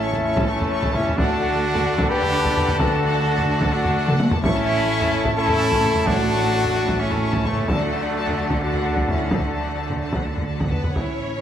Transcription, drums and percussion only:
0.13 taiko low
0.36 taiko
0.61 taiko low
0.83 taiko
0.95 taiko low
1.08 taiko low
1.19 taiko
1.76 taiko low
1.99 taiko
2.22 taiko low
2.45 taiko
2.57 taiko low
2.69 taiko low
2.79 taiko
3.38 taiko low
3.61 taiko
3.85 taiko low
4.08 taiko mid
4.20 taiko high
4.31 taiko low
4.44 taiko
5.01 taiko low
5.25 taiko
5.48 taiko low
5.72 taiko
5.83 taiko low
5.96 taiko low
6.07 taiko
6.65 taiko low
6.88 taiko
7.11 taiko low
7.34 taiko
7.46 taiko low
7.57 taiko low
7.68 taiko
8.27 taiko low
8.50 taiko
8.74 taiko low
8.96 taiko
9.08 taiko low
9.19 taiko low
9.31 taiko
9.90 taiko low
10.13 taiko
10.37 taiko low
10.60 taiko
10.72 taiko low
10.84 taiko low
10.96 taiko

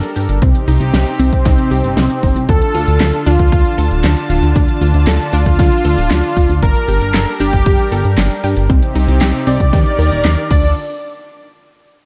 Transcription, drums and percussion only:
0.03 closed hi-hat
0.16 open hi-hat
0.29 closed hi-hat
0.42 kick, closed hi-hat
0.55 closed hi-hat
0.68 open hi-hat
0.81 closed hi-hat
0.94 snare, closed hi-hat
1.07 closed hi-hat
1.19 open hi-hat
1.33 kick, closed hi-hat
1.45 kick, snare, closed hi-hat
1.58 closed hi-hat
1.71 open hi-hat
1.84 closed hi-hat
1.97 snare, closed hi-hat
2.10 closed hi-hat
2.23 kick, open hi-hat
2.36 closed hi-hat
2.49 kick, closed hi-hat
2.62 closed hi-hat
2.75 open hi-hat
2.88 closed hi-hat
3.01 snare, clap, closed hi-hat
3.14 closed hi-hat
3.26 open hi-hat
3.39 kick, closed hi-hat
3.52 kick, closed hi-hat
3.65 closed hi-hat
3.78 open hi-hat
3.91 closed hi-hat
4.04 snare, clap, closed hi-hat
4.17 closed hi-hat
4.30 open hi-hat
4.43 closed hi-hat
4.56 kick, closed hi-hat
4.69 closed hi-hat
4.81 open hi-hat
4.94 closed hi-hat
5.07 snare, clap, closed hi-hat
5.20 closed hi-hat
5.33 open hi-hat
5.46 kick, closed hi-hat
5.59 kick, snare, closed hi-hat
5.72 closed hi-hat
5.85 open hi-hat
5.98 closed hi-hat
6.11 snare, clap, closed hi-hat
6.24 closed hi-hat
6.37 kick, open hi-hat
6.50 closed hi-hat
6.62 kick, closed hi-hat
6.75 closed hi-hat
6.88 open hi-hat
7.01 closed hi-hat
7.14 snare, clap, closed hi-hat
7.27 closed hi-hat
7.40 open hi-hat
7.53 kick, closed hi-hat
7.66 kick, closed hi-hat
7.79 closed hi-hat
7.92 open hi-hat
8.05 closed hi-hat
8.18 snare, clap, closed hi-hat
8.31 closed hi-hat
8.44 open hi-hat
8.57 closed hi-hat
8.70 kick, closed hi-hat
8.83 closed hi-hat
8.95 open hi-hat
9.08 closed hi-hat
9.21 snare, clap, closed hi-hat
9.34 closed hi-hat
9.47 open hi-hat
9.60 kick, closed hi-hat
9.73 kick, snare, closed hi-hat
9.86 closed hi-hat
9.99 open hi-hat
10.12 closed hi-hat
10.25 snare, clap, closed hi-hat
10.38 closed hi-hat
10.51 kick, crash

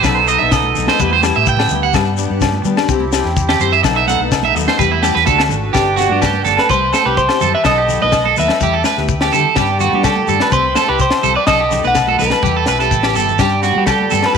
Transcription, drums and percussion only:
0.03 kick, snare, low agogo, shekere
0.28 shekere
0.51 kick, snare, low agogo, shekere
0.63 high conga
0.75 low conga, shekere
0.87 snare, high conga, low agogo
1.00 kick, shekere
1.10 high conga
1.23 snare, low agogo, shekere
1.46 kick, shekere
1.57 snare, low conga, low agogo
1.68 low conga, shekere
1.94 kick, snare, low agogo, shekere
2.17 shekere
2.41 kick, snare, low agogo, shekere
2.53 high conga
2.63 low conga, shekere
2.77 snare, high conga, low agogo
2.89 kick, shekere
3.00 high conga
3.13 snare, low agogo, shekere
3.25 snare
3.37 kick, shekere
3.49 snare, low conga, low agogo
3.59 low conga, shekere
3.84 kick, snare, low agogo, shekere
4.07 snare, high conga, shekere
4.32 kick, snare, low agogo, shekere
4.43 high conga
4.55 low conga, shekere
4.67 snare, high conga, low agogo
4.79 kick, shekere
4.92 high conga
5.03 snare, low agogo, shekere
5.16 snare
5.26 kick, high conga, shekere
5.39 snare, low agogo
5.49 low conga, shekere
5.74 kick, snare, low agogo, shekere
5.97 snare, low conga, shekere
6.09 high conga
6.22 kick, snare, low agogo, shekere
6.33 high conga
6.45 snare, low conga, shekere
6.57 snare, high conga, low agogo
6.70 kick, shekere
6.93 snare, high conga, low agogo, shekere
7.17 kick, shekere
7.29 snare, low agogo
7.41 low conga, shekere
7.64 kick, snare, low agogo, shekere
7.88 low conga, shekere
8.02 high conga
8.12 kick, snare, low agogo, shekere
8.26 high conga
8.37 low conga, shekere
8.48 snare, high conga, low agogo
8.61 kick, shekere
8.84 snare, high conga, low agogo, shekere
8.97 snare
9.08 kick, shekere
9.21 snare, low agogo
9.33 low conga, shekere
9.56 kick, snare, low agogo, shekere
9.80 low conga, shekere
9.93 high conga
10.03 kick, snare, low agogo, shekere
10.16 high conga
10.28 low conga, shekere
10.40 snare, high conga, low agogo
10.52 kick, shekere
10.75 snare, high conga, low agogo, shekere
10.99 kick, shekere
11.11 snare, low agogo
11.24 low conga, shekere
11.47 kick, snare, low agogo, shekere
11.71 snare, low conga, shekere
11.84 high conga, shekere
11.95 kick, snare, low agogo, shekere
12.07 high conga
12.19 snare, low conga, shekere
12.30 snare, high conga, low agogo, shekere
12.43 kick, shekere
12.66 snare, high conga, low agogo, shekere
12.79 snare, shekere
12.91 kick, high conga, shekere
13.03 snare, high conga, low agogo, shekere
13.15 low conga, shekere
13.28 low conga, shekere
13.39 kick, snare, low agogo, shekere
13.63 snare, shekere
13.75 high conga
13.86 kick, snare, low agogo, shekere
14.01 high conga
14.11 snare, low conga, shekere
14.23 snare, high conga, low agogo
14.35 kick

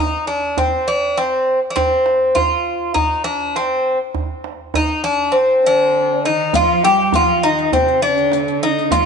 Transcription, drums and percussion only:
0.14 darbuka ka
0.28 darbuka ka
0.43 darbuka ka
0.57 darbuka dum
1.03 darbuka ka
1.18 darbuka tek
1.77 darbuka dum
2.06 darbuka tek
2.36 darbuka dum
2.51 darbuka ka
2.67 darbuka ka
2.81 darbuka ka
2.96 darbuka dum
3.41 darbuka ka
3.56 darbuka tek
4.00 darbuka ka
4.14 darbuka dum
4.44 darbuka tek
4.74 darbuka dum
5.19 darbuka ka
6.53 riq, darbuka dum
6.84 riq, darbuka tek
7.12 riq, darbuka dum
7.28 darbuka ka
7.44 riq
7.58 riq
7.72 riq, darbuka dum
7.87 riq, darbuka ka
8.16 riq, darbuka ka
8.32 riq, darbuka tek
8.46 riq, darbuka ka
8.78 riq
8.91 riq, darbuka dum

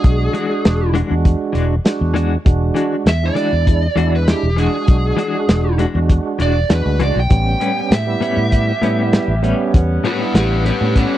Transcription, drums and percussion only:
0.04 kick, closed hi-hat
0.34 closed hi-hat
0.65 snare, closed hi-hat
0.95 closed hi-hat
1.25 kick, closed hi-hat
1.55 closed hi-hat
1.85 snare, closed hi-hat
2.16 closed hi-hat
2.46 kick, closed hi-hat
2.76 closed hi-hat
3.06 snare, closed hi-hat
3.36 closed hi-hat
3.67 kick, closed hi-hat
3.97 closed hi-hat
4.28 snare, closed hi-hat
4.58 closed hi-hat
4.87 kick, closed hi-hat
5.18 closed hi-hat
5.49 snare, closed hi-hat
5.79 closed hi-hat
6.10 kick, closed hi-hat
6.40 closed hi-hat
6.70 snare, closed hi-hat
7.00 closed hi-hat
7.30 kick, closed hi-hat
7.61 closed hi-hat
7.92 snare, closed hi-hat
8.22 closed hi-hat
8.52 kick, closed hi-hat
8.83 closed hi-hat
9.13 snare, closed hi-hat
9.44 closed hi-hat
9.74 kick, closed hi-hat
10.05 closed hi-hat
10.35 snare, closed hi-hat
10.66 closed hi-hat
10.95 kick, closed hi-hat

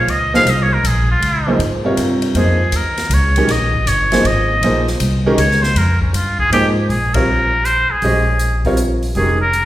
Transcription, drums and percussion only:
0.08 ride
0.34 snare
0.47 hi-hat pedal, ride
0.85 hi-hat pedal, ride
1.22 ride
1.60 ride
1.97 hi-hat pedal, ride
2.22 ride
2.35 ride
2.72 hi-hat pedal, ride
2.97 snare, ride
3.11 hi-hat pedal, ride
3.36 ride
3.49 snare, ride
3.74 kick
3.87 hi-hat pedal, ride
4.12 snare, ride
4.25 ride
4.63 ride
4.87 snare
5.00 hi-hat pedal, ride
5.38 hi-hat pedal, ride
5.51 snare
5.63 snare
5.76 ride
6.01 kick
6.14 hi-hat pedal, ride
6.39 kick
6.53 ride
6.90 open hi-hat
7.14 kick, ride
7.65 closed hi-hat
8.02 open hi-hat
8.39 closed hi-hat
8.65 kick, open hi-hat
8.77 closed hi-hat
9.03 open hi-hat
9.15 open hi-hat
9.53 closed hi-hat

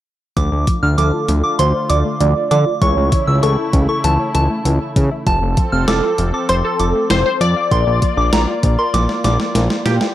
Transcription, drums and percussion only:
0.37 kick, closed hi-hat
0.67 kick, closed hi-hat
0.98 closed hi-hat
1.29 closed hi-hat
1.59 closed hi-hat
1.90 closed hi-hat
2.21 closed hi-hat
2.51 closed hi-hat
2.82 kick, closed hi-hat
3.12 kick, closed hi-hat
3.43 closed hi-hat
3.73 kick, closed hi-hat
4.04 closed hi-hat
4.35 closed hi-hat
4.65 closed hi-hat
4.96 kick, closed hi-hat
5.27 kick, closed hi-hat
5.57 kick, closed hi-hat
5.88 snare, closed hi-hat
6.18 closed hi-hat
6.49 closed hi-hat
6.80 closed hi-hat
7.10 snare, closed hi-hat
7.41 closed hi-hat
7.72 kick, closed hi-hat
8.02 kick, closed hi-hat
8.33 snare, closed hi-hat
8.63 kick, closed hi-hat
8.94 snare, closed hi-hat
9.09 snare
9.24 snare, closed hi-hat
9.40 snare
9.55 snare, closed hi-hat
9.70 snare
9.86 snare, closed hi-hat
10.01 snare

